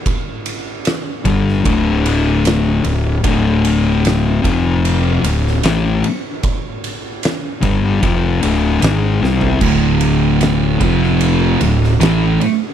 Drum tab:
CC |----------------|----------------|----------------|x---------------|
RD |x-x-x-x-x-x-x-x-|x-x-x-x-x-x-x-x-|x-x-x-x-x-x-x---|--x-x-x-x-x-x-x-|
SD |----o--o----o---|----o------oo---|----o-------o-o-|----o--o---oo---|
FT |----------------|----------------|---------------o|----------------|
BD |o-----o-o-------|o-----o---------|o-----o-o-------|o-----o---------|